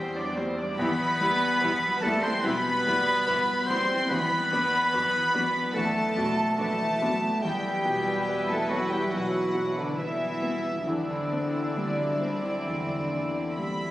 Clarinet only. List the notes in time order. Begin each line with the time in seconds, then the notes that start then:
Already playing: G4
0.78 B4
2.02 A4
2.23 C5
2.43 B4
3.67 C5
4.09 B4
5.74 A4
6.58 A4
7.43 G4
8.49 A4
8.69 F#4
8.92 G4
9.11 F#4
9.77 D4
9.99 E4
10.88 D4